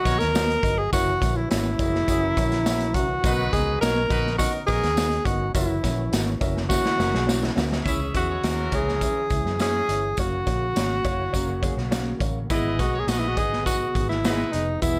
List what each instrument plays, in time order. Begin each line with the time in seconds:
Already playing: tonewheel organ F#3 B3 D#5, tenor saxophone F#4
0.05 fingered electric bass A#1, grand piano B3 D#4 F#4 A#4 D#5, horn section C#4 A#4 C#5, kick, closed hi-hat, tambourine
0.19 fingered electric bass D#2, tenor saxophone A#4, snare, closed hi-hat
0.34 grand piano B3 D#4 F#4 A#4 D#5, snare, closed hi-hat, tambourine
0.50 closed hi-hat
0.63 fingered electric bass G1, grand piano B3 D#4 F#4 A#4 D#5, kick, closed hi-hat, tambourine
0.78 tenor saxophone G#4
0.93 fingered electric bass F#1, tonewheel organ E3 C#4 F#4, grand piano C#4 E4 F#4 A#4 E5, tenor saxophone F#4, kick, closed hi-hat, tambourine
1.21 fingered electric bass A#1, grand piano C#4 E4 F#4 A#4 E5, kick, snare, closed hi-hat, tambourine
1.36 tenor saxophone E4
1.50 fingered electric bass G#1, grand piano C#4 E4 F#4 A#4 E5, tenor saxophone E4, snare, closed hi-hat, tambourine
1.79 fingered electric bass F#1, clean electric guitar G#3 E4, grand piano C#4 E4 F#4 A#4 E5, kick, closed hi-hat, tambourine
1.95 snare
2.08 fingered electric bass F#1, grand piano C#4 E4 F#4 A#4 E5, clean electric guitar G#4, kick, closed hi-hat, tambourine
2.23 clean electric guitar C#4 A#4
2.37 fingered electric bass A#1, grand piano C#4 E4 F#4 A#4 E5, kick, closed hi-hat, tambourine
2.52 snare, closed hi-hat
2.66 grand piano C#4 E4 F#4 A#4 E5, snare, closed hi-hat, tambourine
2.80 closed hi-hat
2.94 fingered electric bass C2, grand piano C#4 E4 F#4 A#4 E5, tenor saxophone F#4, kick, closed hi-hat, tambourine
3.23 fingered electric bass B1, grand piano B2 B3 D#4 F#4 A#4 D#5, horn section F#3 D#4 B4, tonewheel organ B3 D#4, kick, closed hi-hat, tambourine
3.52 fingered electric bass C#2, grand piano B3 D#4 F#4 A#4 D#5, tenor saxophone G#4, kick, snare, closed hi-hat, tambourine
3.81 fingered electric bass B1, grand piano B3 D#4 F#4 A#4 D#5, horn section C#4 A#4 C#5, tenor saxophone A#4, snare, closed hi-hat, tambourine
4.09 fingered electric bass A#1, horn section F#3 D#4 B4, grand piano B3 D#4 F#4 A#4 D#5, kick, closed hi-hat, tambourine
4.27 snare
4.38 horn section F#3 D#4 A#4, grand piano B3 D#4 F#4 A#4 D#5, tenor saxophone F#4, kick, closed hi-hat, tambourine
4.66 fingered electric bass A#1, horn section F#3 D#4 A#4, grand piano B3 D#4 F#4 A#4 D#5, tenor saxophone G#4, kick, closed hi-hat, tambourine
4.83 fingered electric bass D#2, snare, closed hi-hat
4.96 grand piano B3 D#4 F#4 A#4 D#5, snare, closed hi-hat, tambourine
5.12 closed hi-hat
5.25 fingered electric bass G1, grand piano B3 D#4 F#4 A#4 D#5, tenor saxophone F#4, kick, closed hi-hat, tambourine
5.54 fingered electric bass F#1, tonewheel organ E3 F#4, grand piano C#4 E4 F#4 A#4 E5, tenor saxophone E4, kick, closed hi-hat, tambourine
5.83 fingered electric bass A#1, grand piano C#4 E4 F#4 A#4 E5, kick, snare, closed hi-hat, tambourine
6.12 fingered electric bass G#1, grand piano C#4 E4 F#4 A#4 E5, snare, closed hi-hat, tambourine
6.41 fingered electric bass F#1, grand piano C#4 E4 F#4 A#4 E5, kick, closed hi-hat, tambourine
6.57 snare
6.69 grand piano C#4 E4 F#4 A#4 E5, tenor saxophone F#4, kick, snare, tambourine
6.85 clean electric guitar E4 C#5, snare
6.98 fingered electric bass F#1, grand piano C#4 E4 F#4 A#4 E5, clean electric guitar C#4 A#4, snare, tambourine
7.14 fingered electric bass B1, clean electric guitar G#4, snare
7.27 clean electric guitar A#3 F#4, grand piano C#4 E4 F#4 A#4 E5, snare, tambourine
7.42 clean electric guitar G#3 E4, snare
7.56 fingered electric bass D2, grand piano C#4 E4 F#4 A#4 E5, snare, tambourine
7.72 snare
7.85 fingered electric bass C#2, grand piano C#3 C#4 E4 G#4 E5, tonewheel organ E3 C#4 G#4, horn section C#4 G#4 E5, tenor saxophone E4, kick, closed hi-hat, tambourine
8.14 fingered electric bass E2, grand piano C#4 E4 G#4 E5, tenor saxophone F#4, kick, closed hi-hat, tambourine
8.29 horn section G#3 E4 C#5
8.43 fingered electric bass D#2, horn section E3 C#4 A#4, grand piano C#4 E4 G#4 E5, snare, closed hi-hat, tambourine
8.72 fingered electric bass C#2, grand piano C#4 E4 G#4 E5, tenor saxophone G#4, kick, closed hi-hat, tambourine
8.88 snare
9.01 grand piano C#4 E4 G#4 E5, kick, closed hi-hat, tambourine
9.30 fingered electric bass C#2, grand piano C#4 E4 G#4 E5, kick, closed hi-hat, tambourine
9.45 fingered electric bass F#2, snare
9.59 horn section E3 C#4 G#4, grand piano C#4 E4 G#4 E5, tenor saxophone G#4, snare, closed hi-hat, tambourine
9.88 fingered electric bass G1, grand piano C#4 E4 E5, closed hi-hat, tambourine
10.17 fingered electric bass F#1, tonewheel organ C#3 A#3 F#4, grand piano A#3 C#4 F#4 C#5, tenor saxophone F#4, kick, closed hi-hat, tambourine
10.46 fingered electric bass A#1, grand piano A#3 C#4 F#4 C#5, kick, snare, closed hi-hat, tambourine
10.76 fingered electric bass G#1, grand piano A#3 C#4 F#4 C#5, snare, closed hi-hat, tambourine
11.04 fingered electric bass F#1, grand piano A#3 C#4 F#4 C#5, clean electric guitar E4 C#5, kick, closed hi-hat, tambourine
11.33 fingered electric bass F#1, grand piano A#3 C#4 F#4 C#5, clean electric guitar C#4 A#4, kick, closed hi-hat, tambourine
11.48 clean electric guitar A#3 F#4
11.62 grand piano A#3 C#4 F#4 C#5, clean electric guitar G#4, kick, closed hi-hat, tambourine
11.77 fingered electric bass B1, clean electric guitar A#3 F#4, snare
11.91 grand piano A#3 C#4 F#4 C#5, snare, closed hi-hat, tambourine
12.20 fingered electric bass A1, grand piano A#3 C#4 F#4 C#5, kick, closed hi-hat, tambourine
12.50 fingered electric bass G#1, grand piano G#2 B3 D#4 G#4 D#5, tonewheel organ B2 B3 G#4, horn section B3 G#4 D#5, tenor saxophone E4, kick, closed hi-hat, tambourine
12.78 fingered electric bass B1, grand piano B3 D#4 G#4 D#5, tenor saxophone F#4, kick, snare, closed hi-hat, tambourine
12.94 horn section C#4 A#4 C#5
13.00 tenor saxophone G#4
13.07 fingered electric bass A#1, grand piano B3 D#4 G#4 D#5, horn section B3 G#4 D#5, tenor saxophone F#4, snare, closed hi-hat, tambourine
13.19 tenor saxophone E4
13.28 tenor saxophone F#4
13.37 fingered electric bass G#1, grand piano B3 D#4 G#4 D#5, tenor saxophone G#4, kick, closed hi-hat, tambourine
13.53 snare
13.66 grand piano B3 D#4 G#4 D#5, tenor saxophone F#4, kick, closed hi-hat, tambourine
13.95 fingered electric bass G#1, grand piano B3 D#4 G#4 D#5, kick, closed hi-hat, tambourine
14.09 tenor saxophone E4, snare
14.24 horn section G#3 D#4 B4, grand piano B3 D#4 G#4 D#5, snare, closed hi-hat, tambourine
14.52 fingered electric bass F1, grand piano B3 D#4 G#4 D#5, tenor saxophone D#4, closed hi-hat, tambourine
14.82 fingered electric bass E1, tonewheel organ E3, grand piano E3 B3 E4 G#4 E5, tenor saxophone E4, kick, closed hi-hat, tambourine